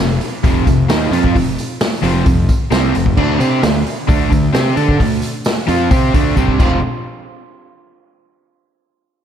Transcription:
0.00 0.19 F1 medium
0.00 0.16 F2 medium
0.00 0.16 C3 medium
0.21 open hi-hat medium
0.21 tambourine soft
0.43 0.65 F1 loud
0.43 0.66 F2 medium
0.43 0.66 C3 loud
0.43 0.66 F3 medium
0.43 kick loud
0.43 open hi-hat medium
0.43 tambourine medium
0.67 0.88 F1 medium
0.67 0.85 F2 medium
0.67 0.85 C3 medium
0.67 kick medium
0.67 open hi-hat medium
0.67 tambourine medium
0.89 1.10 D#2 medium
0.89 1.12 D#3 medium
0.89 1.12 A#3 medium
0.89 1.12 D#4 medium
0.89 snare loud
0.89 open hi-hat medium
0.89 tambourine medium
1.11 1.33 F2 loud
1.11 1.34 F3 medium
1.11 1.34 C4 medium
1.11 1.35 F4 medium
1.11 open hi-hat medium
1.11 tambourine medium
1.24 kick medium
1.35 1.56 F1 medium
1.35 1.53 F2 medium
1.35 1.53 C3 medium
1.35 kick medium
1.35 open hi-hat medium
1.58 open hi-hat medium
1.58 tambourine medium
1.81 snare loud
1.81 open hi-hat medium
1.81 tambourine medium
2.03 2.24 F1 medium
2.03 2.25 F2 medium
2.03 2.25 C3 medium
2.03 2.26 F3 loud
2.03 open hi-hat medium
2.03 tambourine soft
2.26 2.47 F1 medium
2.26 2.44 F2 medium
2.26 2.44 C3 medium
2.26 kick loud
2.26 open hi-hat medium
2.26 tambourine medium
2.49 kick medium
2.49 open hi-hat medium
2.49 tambourine medium
2.71 2.93 C2 medium
2.71 2.93 C3 medium
2.71 2.94 G3 medium
2.71 2.94 C4 loud
2.71 snare loud
2.71 open hi-hat medium
2.71 tambourine medium
2.94 3.16 F1 medium
2.94 3.12 F2 medium
2.94 3.12 C3 medium
2.94 open hi-hat medium
2.94 tambourine medium
3.06 kick medium
3.17 3.38 D2 loud
3.17 3.39 D3 medium
3.17 3.39 A3 medium
3.17 3.39 D4 loud
3.17 kick medium
3.17 crash medium
3.39 3.61 C3 medium
3.39 3.62 C4 medium
3.39 3.62 G4 medium
3.39 3.62 C5 loud
3.39 open hi-hat medium
3.39 tambourine medium
3.62 3.84 D2 medium
3.62 3.81 D3 medium
3.62 3.81 A3 medium
3.62 snare loud
3.62 open hi-hat medium
3.62 tambourine loud
3.86 open hi-hat medium
3.86 tambourine soft
4.07 4.30 D2 medium
4.07 4.29 D3 loud
4.07 4.29 A3 loud
4.07 4.31 D4 loud
4.07 kick loud
4.07 open hi-hat medium
4.07 tambourine medium
4.30 4.52 D2 medium
4.30 4.49 D3 medium
4.30 4.49 A3 medium
4.30 kick medium
4.30 open hi-hat medium
4.30 tambourine medium
4.53 4.75 C3 medium
4.53 4.76 C4 medium
4.53 4.76 G4 medium
4.53 4.76 C5 loud
4.53 snare loud
4.53 open hi-hat medium
4.53 tambourine medium
4.76 4.98 D3 loud
4.76 4.99 D4 medium
4.76 4.99 A4 medium
4.76 4.99 D5 medium
4.76 open hi-hat medium
4.76 tambourine medium
4.89 kick medium
4.99 5.21 D2 medium
4.99 5.17 D3 medium
4.99 5.18 A3 medium
4.99 kick medium
4.99 open hi-hat medium
4.99 tambourine soft
5.22 open hi-hat medium
5.22 tambourine medium
5.45 snare loud
5.45 open hi-hat medium
5.45 tambourine loud
5.68 5.89 F2 medium
5.68 5.90 F3 medium
5.68 5.89 C4 medium
5.68 5.90 F4 medium
5.68 open hi-hat medium
5.68 tambourine soft
5.91 6.12 C3 medium
5.91 6.13 C4 loud
5.91 6.13 G4 medium
5.91 6.13 C5 loud
5.91 kick loud
5.91 open hi-hat medium
5.91 tambourine medium
6.14 6.35 D2 medium
6.14 6.36 D3 medium
6.14 6.36 A3 medium
6.14 6.36 D4 medium
6.14 kick medium
6.14 open hi-hat medium
6.14 tambourine medium
6.37 6.58 C2 medium
6.37 6.58 C3 medium
6.37 6.59 G3 medium
6.37 6.59 C4 loud
6.37 kick medium
6.37 tambourine medium
6.48 kick medium
6.58 6.81 F1 loud
6.58 6.77 F2 medium
6.58 6.77 C3 medium
6.58 6.77 F3 loud
6.58 6.78 G#3 medium
6.58 6.78 C4 medium
6.58 6.78 F4 loud
6.58 kick loud
6.58 crash medium
6.58 tambourine medium

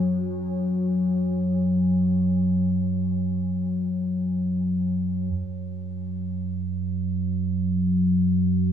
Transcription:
0.00 5.32 F#2 medium
0.00 5.33 F#3 medium
0.00 5.35 F#4 medium
0.00 5.35 C#5 medium
0.00 5.36 C#5 medium
0.00 5.34 G#5 medium
5.34 8.72 F#2 medium
5.34 8.72 F#3 medium

